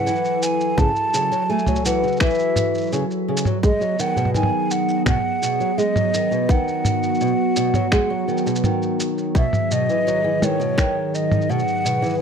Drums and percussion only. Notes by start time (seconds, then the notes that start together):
0.07 shaker
0.16 shaker
0.25 shaker
0.42 shaker
0.60 shaker
0.78 kick, mid tom, shaker
0.96 shaker
1.14 shaker
1.32 shaker
1.50 shaker
1.58 shaker
1.66 mid tom, shaker
1.76 shaker
1.85 shaker
2.03 shaker
2.07 shaker
2.12 shaker
2.16 finger snap, shaker
2.21 kick, shaker
2.25 shaker
2.30 shaker
2.34 shaker
2.39 shaker
2.56 mid tom, shaker
2.75 shaker
2.78 shaker
2.81 shaker
2.83 shaker
2.86 shaker
2.89 shaker
2.92 shaker
3.10 shaker
3.37 shaker
3.45 mid tom, shaker
3.63 kick, shaker
3.81 shaker
3.99 shaker
4.16 mid tom, shaker
4.25 mid tom
4.34 mid tom, shaker
4.43 mid tom
4.71 shaker
4.88 shaker
5.06 finger snap, kick, mid tom, shaker
5.42 shaker
5.60 shaker
5.78 shaker
5.96 mid tom, shaker
6.14 shaker
6.32 shaker
6.49 kick, shaker
6.68 shaker
6.85 mid tom, shaker
7.03 shaker
7.15 shaker
7.21 shaker
7.56 shaker
7.74 mid tom, shaker
7.92 finger snap, kick, shaker
8.28 shaker
8.37 shaker
8.47 shaker
8.55 shaker
8.64 mid tom, shaker
8.82 shaker
9.00 shaker
9.18 shaker
9.35 kick, shaker
9.53 mid tom, shaker
9.71 shaker
9.89 shaker
10.07 shaker
10.42 mid tom, shaker
10.61 shaker
10.78 finger snap, kick, shaker
11.15 shaker
11.31 mid tom, shaker
11.41 shaker
11.50 shaker
11.59 shaker
11.68 shaker
11.86 shaker
12.04 shaker
12.06 shaker
12.08 shaker
12.10 shaker
12.12 shaker
12.15 shaker
12.17 shaker